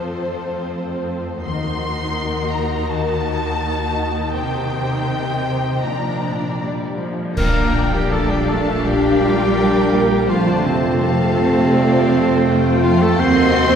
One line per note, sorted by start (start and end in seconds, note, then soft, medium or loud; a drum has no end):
0.00 1.40 F2 soft
0.00 1.40 F3 soft
0.00 1.47 F3 soft
0.00 0.22 A3 soft
0.00 1.40 C4 soft
0.00 0.46 F4 soft
0.00 1.40 F4 soft
0.00 0.94 A4 soft
0.00 1.44 A4 soft
0.00 0.70 C5 soft
0.00 1.44 C5 medium
0.23 1.47 A3 soft
0.47 1.47 F4 soft
0.71 1.19 C5 soft
1.20 1.47 C5 soft
1.43 4.34 D#2 medium
1.43 5.81 D#3 medium
1.43 2.87 D#3 medium
1.43 5.81 D#4 medium
1.43 4.30 F#4 medium
1.43 4.34 A#4 medium
1.43 2.50 C6 medium
1.93 3.36 A#3 soft
2.16 2.63 F#4 soft
2.40 3.84 D#5 soft
2.51 2.87 A#5 medium
2.64 3.59 F#4 soft
2.88 4.37 D#3 soft
2.88 4.34 A5 medium
3.13 5.07 D#4 soft
3.37 4.37 A#3 soft
3.60 4.09 F#4 soft
3.85 5.33 D#5 soft
4.10 4.37 F#4 soft
4.33 5.85 C3 medium
4.33 5.88 C3 medium
4.33 5.81 G4 medium
4.33 5.81 C5 medium
4.33 5.82 G5 medium
4.60 5.88 G3 soft
4.84 5.88 C4 soft
5.09 5.58 D#4 soft
5.34 5.88 D#5 soft
5.83 7.14 A#2 soft
5.83 7.36 A#2 soft
5.83 6.53 F3 soft
5.83 7.17 D4 soft
5.83 6.54 D4 soft
5.83 7.17 D5 soft
5.83 6.61 A#5 medium
6.10 7.61 F3 soft
6.36 7.86 D4 soft
6.61 6.97 G3 medium
6.61 7.11 F4 soft
6.87 10.32 D5 soft
7.00 7.38 F3 soft
7.12 8.11 F4 soft
7.36 10.25 A#1 medium
7.36 8.84 A#2 medium
7.36 10.26 A#2 medium
7.36 8.08 A#3 medium
7.36 7.89 A#3 medium
7.36 8.11 D4 medium
7.36 10.26 D4 medium
7.36 7.96 A#4 medium
7.36 8.81 D5 medium
7.36 8.08 G5 medium
7.36 7.89 A#5 medium
7.36 concert bass drum medium
7.36 crash medium
7.62 9.08 F3 soft
7.87 9.33 D4 soft
7.93 8.12 G3 medium
7.93 8.14 G4 medium
7.93 8.12 G5 medium
8.11 8.30 A3 medium
8.11 9.57 D4 medium
8.11 8.60 F4 medium
8.11 8.32 A4 medium
8.11 10.29 F5 medium
8.11 8.30 A5 medium
8.30 8.49 G3 medium
8.30 8.51 G4 medium
8.30 8.48 G5 medium
8.49 8.85 A3 medium
8.49 8.85 A4 medium
8.49 8.85 A5 medium
8.61 9.57 F4 soft
8.85 10.33 A#2 medium
8.85 10.30 G3 medium
8.85 9.21 G4 medium
8.85 10.32 G4 loud
8.85 10.29 A#4 medium
8.85 10.30 G5 medium
9.09 10.29 F3 soft
9.22 9.58 F4 medium
9.34 10.33 D4 soft
9.58 9.93 D4 medium
9.58 10.05 F4 soft
9.58 10.30 A#4 medium
9.82 10.33 A#4 medium
9.95 10.30 A#3 medium
10.06 10.77 F4 soft
10.29 13.15 F2 medium
10.29 10.47 F3 medium
10.29 11.74 F3 medium
10.29 11.02 A3 medium
10.29 13.16 A3 medium
10.29 10.50 F4 medium
10.29 13.20 F4 medium
10.29 11.00 C5 medium
10.29 11.01 C5 medium
10.29 10.48 F5 medium
10.29 11.00 A5 medium
10.48 10.66 D3 medium
10.48 10.68 D4 medium
10.48 10.66 D5 medium
10.54 11.97 C4 soft
10.66 12.83 C3 medium
10.66 12.82 C4 medium
10.66 12.83 C5 medium
10.79 12.22 F4 soft
11.01 12.45 A3 medium
11.01 11.74 A4 medium
11.01 11.72 F5 medium
11.01 11.72 A5 medium
11.27 12.71 C5 medium
11.74 13.22 F3 medium
11.74 12.46 A4 medium
11.74 12.10 D5 medium
11.74 12.47 F5 medium
12.09 12.46 C5 medium
12.23 13.22 F4 medium
12.47 13.18 A3 medium
12.47 13.20 F4 medium
12.47 13.17 C5 medium
12.47 13.17 G5 medium
12.72 13.22 C5 medium
12.83 13.01 F3 medium
12.83 13.03 F4 loud
12.83 13.01 F5 medium
13.01 13.19 A3 medium
13.01 13.21 A4 medium
13.01 13.19 A5 medium
13.19 13.75 D#2 medium
13.19 13.55 A#3 medium
13.19 13.75 A#3 medium
13.19 13.75 C4 loud
13.19 13.75 F#4 medium
13.19 13.75 C5 loud
13.19 13.75 D#5 medium
13.19 13.75 F#5 medium
13.19 13.75 C6 loud
13.55 13.75 C4 medium